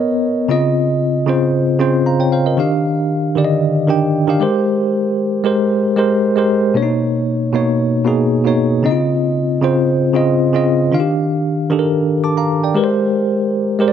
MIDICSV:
0, 0, Header, 1, 2, 480
1, 0, Start_track
1, 0, Tempo, 521739
1, 454, Time_signature, 4, 2, 24, 8
1, 12814, End_track
2, 0, Start_track
2, 0, Title_t, "Tine electric piano"
2, 0, Program_c, 0, 4
2, 0, Control_c, 0, 64, 127
2, 0, Note_on_c, 0, 59, 87
2, 0, Note_on_c, 0, 70, 77
2, 0, Note_on_c, 0, 73, 80
2, 0, Note_on_c, 0, 75, 91
2, 284, Note_off_c, 0, 59, 0
2, 288, Note_off_c, 0, 70, 0
2, 292, Note_off_c, 0, 73, 0
2, 296, Note_off_c, 0, 75, 0
2, 446, Note_on_c, 0, 49, 88
2, 454, Note_on_c, 0, 60, 75
2, 462, Note_on_c, 0, 65, 75
2, 468, Control_c, 0, 64, 0
2, 472, Note_on_c, 0, 75, 97
2, 647, Control_c, 0, 64, 127
2, 1030, Note_off_c, 0, 49, 0
2, 1034, Note_off_c, 0, 60, 0
2, 1038, Note_off_c, 0, 65, 0
2, 1043, Note_off_c, 0, 75, 0
2, 1165, Note_on_c, 0, 49, 89
2, 1173, Note_on_c, 0, 60, 79
2, 1181, Note_on_c, 0, 65, 77
2, 1191, Note_on_c, 0, 72, 96
2, 1557, Note_off_c, 0, 49, 0
2, 1561, Note_off_c, 0, 60, 0
2, 1566, Note_off_c, 0, 65, 0
2, 1570, Note_off_c, 0, 72, 0
2, 1644, Note_on_c, 0, 49, 89
2, 1653, Note_on_c, 0, 60, 81
2, 1661, Note_on_c, 0, 65, 78
2, 1669, Note_on_c, 0, 72, 94
2, 1898, Note_on_c, 0, 82, 64
2, 1901, Note_off_c, 0, 72, 0
2, 1903, Note_on_c, 0, 77, 54
2, 1939, Note_off_c, 0, 49, 0
2, 1944, Note_off_c, 0, 60, 0
2, 1948, Note_off_c, 0, 65, 0
2, 2015, Note_off_c, 0, 82, 0
2, 2018, Note_off_c, 0, 77, 0
2, 2023, Note_on_c, 0, 79, 69
2, 2029, Note_on_c, 0, 73, 62
2, 2131, Note_off_c, 0, 79, 0
2, 2134, Note_off_c, 0, 73, 0
2, 2138, Note_on_c, 0, 77, 70
2, 2144, Note_on_c, 0, 72, 59
2, 2255, Note_off_c, 0, 77, 0
2, 2258, Note_off_c, 0, 72, 0
2, 2264, Note_on_c, 0, 75, 66
2, 2270, Note_on_c, 0, 70, 57
2, 2365, Note_on_c, 0, 51, 87
2, 2373, Note_on_c, 0, 62, 77
2, 2383, Note_on_c, 0, 67, 78
2, 2388, Control_c, 0, 64, 0
2, 2391, Note_on_c, 0, 77, 94
2, 2490, Note_off_c, 0, 75, 0
2, 2493, Note_off_c, 0, 70, 0
2, 2552, Control_c, 0, 64, 127
2, 2949, Note_off_c, 0, 51, 0
2, 2953, Note_off_c, 0, 62, 0
2, 2958, Note_off_c, 0, 67, 0
2, 2963, Note_off_c, 0, 77, 0
2, 3085, Note_on_c, 0, 51, 86
2, 3094, Note_on_c, 0, 50, 77
2, 3103, Note_on_c, 0, 67, 79
2, 3111, Note_on_c, 0, 74, 75
2, 3163, Note_off_c, 0, 74, 0
2, 3169, Note_on_c, 0, 75, 94
2, 3478, Note_off_c, 0, 51, 0
2, 3482, Note_off_c, 0, 50, 0
2, 3486, Note_off_c, 0, 67, 0
2, 3519, Note_off_c, 0, 75, 0
2, 3564, Note_on_c, 0, 51, 86
2, 3574, Note_on_c, 0, 62, 80
2, 3581, Note_on_c, 0, 67, 82
2, 3590, Note_on_c, 0, 79, 94
2, 3859, Note_off_c, 0, 51, 0
2, 3864, Note_off_c, 0, 62, 0
2, 3868, Note_off_c, 0, 67, 0
2, 3872, Note_off_c, 0, 79, 0
2, 3929, Note_on_c, 0, 51, 86
2, 3937, Note_on_c, 0, 62, 79
2, 3946, Note_on_c, 0, 67, 79
2, 3956, Note_on_c, 0, 77, 90
2, 4043, Note_off_c, 0, 67, 0
2, 4047, Note_on_c, 0, 56, 90
2, 4049, Note_off_c, 0, 51, 0
2, 4053, Note_off_c, 0, 62, 0
2, 4054, Note_on_c, 0, 67, 85
2, 4062, Note_off_c, 0, 77, 0
2, 4063, Note_on_c, 0, 70, 81
2, 4068, Control_c, 0, 64, 0
2, 4072, Note_on_c, 0, 72, 98
2, 4216, Control_c, 0, 64, 127
2, 4820, Note_off_c, 0, 56, 0
2, 4824, Note_off_c, 0, 67, 0
2, 4828, Note_off_c, 0, 70, 0
2, 4833, Note_off_c, 0, 72, 0
2, 5002, Note_on_c, 0, 56, 89
2, 5011, Note_on_c, 0, 67, 80
2, 5020, Note_on_c, 0, 70, 78
2, 5029, Note_on_c, 0, 72, 93
2, 5396, Note_off_c, 0, 56, 0
2, 5400, Note_off_c, 0, 67, 0
2, 5405, Note_off_c, 0, 70, 0
2, 5409, Note_off_c, 0, 72, 0
2, 5486, Note_on_c, 0, 56, 88
2, 5494, Note_on_c, 0, 67, 79
2, 5504, Note_on_c, 0, 70, 79
2, 5512, Note_on_c, 0, 72, 93
2, 5780, Note_off_c, 0, 56, 0
2, 5784, Note_off_c, 0, 67, 0
2, 5789, Note_off_c, 0, 70, 0
2, 5793, Note_off_c, 0, 72, 0
2, 5850, Note_on_c, 0, 56, 84
2, 5860, Note_on_c, 0, 67, 76
2, 5869, Note_on_c, 0, 70, 75
2, 5876, Note_on_c, 0, 72, 96
2, 6141, Note_off_c, 0, 56, 0
2, 6145, Note_off_c, 0, 67, 0
2, 6150, Note_off_c, 0, 70, 0
2, 6154, Note_off_c, 0, 72, 0
2, 6204, Note_on_c, 0, 47, 81
2, 6212, Note_on_c, 0, 58, 77
2, 6221, Note_on_c, 0, 62, 62
2, 6227, Control_c, 0, 64, 0
2, 6230, Note_on_c, 0, 73, 94
2, 6277, Note_off_c, 0, 62, 0
2, 6279, Note_on_c, 0, 63, 77
2, 6407, Control_c, 0, 64, 127
2, 6789, Note_off_c, 0, 47, 0
2, 6793, Note_off_c, 0, 58, 0
2, 6802, Note_off_c, 0, 73, 0
2, 6826, Note_off_c, 0, 63, 0
2, 6927, Note_on_c, 0, 47, 90
2, 6936, Note_on_c, 0, 58, 82
2, 6944, Note_on_c, 0, 63, 77
2, 6953, Note_on_c, 0, 73, 93
2, 7319, Note_off_c, 0, 47, 0
2, 7323, Note_off_c, 0, 58, 0
2, 7327, Note_off_c, 0, 63, 0
2, 7331, Note_off_c, 0, 73, 0
2, 7403, Note_on_c, 0, 47, 88
2, 7413, Note_on_c, 0, 58, 75
2, 7422, Note_on_c, 0, 63, 81
2, 7430, Note_on_c, 0, 68, 95
2, 7699, Note_off_c, 0, 47, 0
2, 7703, Note_off_c, 0, 58, 0
2, 7708, Note_off_c, 0, 63, 0
2, 7712, Note_off_c, 0, 68, 0
2, 7769, Note_on_c, 0, 47, 86
2, 7778, Note_on_c, 0, 58, 78
2, 7787, Note_on_c, 0, 63, 78
2, 7795, Note_on_c, 0, 73, 91
2, 8060, Note_off_c, 0, 47, 0
2, 8065, Note_off_c, 0, 58, 0
2, 8069, Note_off_c, 0, 63, 0
2, 8073, Note_off_c, 0, 73, 0
2, 8122, Note_on_c, 0, 49, 85
2, 8132, Note_on_c, 0, 60, 79
2, 8140, Note_on_c, 0, 63, 62
2, 8147, Control_c, 0, 64, 0
2, 8149, Note_on_c, 0, 75, 91
2, 8197, Note_off_c, 0, 63, 0
2, 8198, Note_on_c, 0, 65, 78
2, 8297, Control_c, 0, 64, 127
2, 8708, Note_off_c, 0, 49, 0
2, 8713, Note_off_c, 0, 60, 0
2, 8722, Note_off_c, 0, 75, 0
2, 8746, Note_off_c, 0, 65, 0
2, 8846, Note_on_c, 0, 49, 84
2, 8854, Note_on_c, 0, 60, 78
2, 8864, Note_on_c, 0, 65, 79
2, 8872, Note_on_c, 0, 72, 99
2, 9238, Note_off_c, 0, 49, 0
2, 9242, Note_off_c, 0, 60, 0
2, 9247, Note_off_c, 0, 65, 0
2, 9251, Note_off_c, 0, 72, 0
2, 9325, Note_on_c, 0, 49, 87
2, 9333, Note_on_c, 0, 60, 78
2, 9341, Note_on_c, 0, 65, 81
2, 9351, Note_on_c, 0, 75, 98
2, 9620, Note_off_c, 0, 49, 0
2, 9624, Note_off_c, 0, 60, 0
2, 9628, Note_off_c, 0, 65, 0
2, 9632, Note_off_c, 0, 75, 0
2, 9688, Note_on_c, 0, 49, 85
2, 9697, Note_on_c, 0, 60, 74
2, 9705, Note_on_c, 0, 65, 80
2, 9714, Note_on_c, 0, 75, 93
2, 9980, Note_off_c, 0, 49, 0
2, 9984, Note_off_c, 0, 60, 0
2, 9988, Note_off_c, 0, 65, 0
2, 9992, Note_off_c, 0, 75, 0
2, 10043, Note_on_c, 0, 51, 84
2, 10051, Note_on_c, 0, 62, 77
2, 10059, Note_on_c, 0, 65, 61
2, 10066, Control_c, 0, 64, 0
2, 10069, Note_on_c, 0, 77, 94
2, 10117, Note_off_c, 0, 65, 0
2, 10119, Note_on_c, 0, 67, 79
2, 10248, Control_c, 0, 64, 127
2, 10628, Note_off_c, 0, 51, 0
2, 10632, Note_off_c, 0, 62, 0
2, 10642, Note_off_c, 0, 77, 0
2, 10666, Note_off_c, 0, 67, 0
2, 10764, Note_on_c, 0, 51, 87
2, 10771, Note_on_c, 0, 62, 81
2, 10780, Note_on_c, 0, 67, 82
2, 10789, Note_on_c, 0, 69, 75
2, 10841, Note_off_c, 0, 69, 0
2, 10848, Note_on_c, 0, 70, 94
2, 11157, Note_off_c, 0, 51, 0
2, 11161, Note_off_c, 0, 62, 0
2, 11165, Note_off_c, 0, 67, 0
2, 11199, Note_off_c, 0, 70, 0
2, 11258, Note_on_c, 0, 86, 69
2, 11263, Note_on_c, 0, 81, 59
2, 11375, Note_off_c, 0, 86, 0
2, 11378, Note_off_c, 0, 81, 0
2, 11383, Note_on_c, 0, 82, 68
2, 11388, Note_on_c, 0, 77, 60
2, 11609, Note_off_c, 0, 82, 0
2, 11612, Note_off_c, 0, 77, 0
2, 11625, Note_on_c, 0, 79, 67
2, 11630, Note_on_c, 0, 74, 54
2, 11726, Note_on_c, 0, 56, 89
2, 11735, Note_on_c, 0, 67, 79
2, 11744, Note_on_c, 0, 70, 80
2, 11746, Control_c, 0, 64, 0
2, 11751, Note_on_c, 0, 71, 76
2, 11803, Note_off_c, 0, 71, 0
2, 11810, Note_on_c, 0, 72, 97
2, 11850, Note_off_c, 0, 79, 0
2, 11853, Note_off_c, 0, 74, 0
2, 11883, Control_c, 0, 64, 127
2, 12500, Note_off_c, 0, 56, 0
2, 12505, Note_off_c, 0, 67, 0
2, 12509, Note_off_c, 0, 70, 0
2, 12542, Note_off_c, 0, 72, 0
2, 12687, Note_on_c, 0, 56, 84
2, 12696, Note_on_c, 0, 67, 80
2, 12704, Note_on_c, 0, 70, 81
2, 12712, Note_on_c, 0, 72, 78
2, 12763, Note_off_c, 0, 72, 0
2, 12770, Note_on_c, 0, 74, 98
2, 12814, Note_off_c, 0, 56, 0
2, 12814, Note_off_c, 0, 67, 0
2, 12814, Note_off_c, 0, 70, 0
2, 12814, Note_off_c, 0, 74, 0
2, 12814, End_track
0, 0, End_of_file